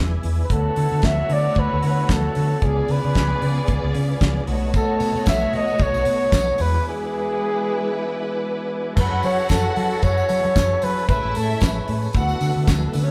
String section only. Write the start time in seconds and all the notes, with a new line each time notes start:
Already playing: G#4 G#5
0.51 A3 F#4 C#5
2.61 B3 G#4 D5
4.49 A3 F#4 C#5
6.59 G#3 E4 B4
8.97 F#4 F#5
11.09 E4 E5
12.15 F#4 F#5
12.69 F#3 F#4
12.77 G#3 G#4
12.86 A3 A4
12.94 B3 B4
13.03 C#4 C#5